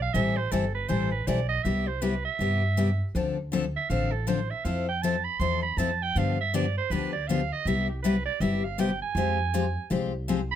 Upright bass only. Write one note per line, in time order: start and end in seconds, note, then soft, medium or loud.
0.14 0.45 A1 loud
0.52 0.84 G1 medium
0.90 1.22 A1 medium
1.27 1.59 B1 medium
1.65 2.25 C2 medium
2.39 3.00 G2 medium
3.15 3.75 D2 medium
3.90 4.50 A1 medium
4.65 5.25 F2 medium
5.40 5.72 E2 medium
5.77 6.09 F2 medium
6.15 6.76 G2 medium
6.90 7.50 D2 medium
7.65 8.26 C2 medium
8.40 9.01 G1 medium
9.15 9.75 F2 medium
9.91 10.51 C2 medium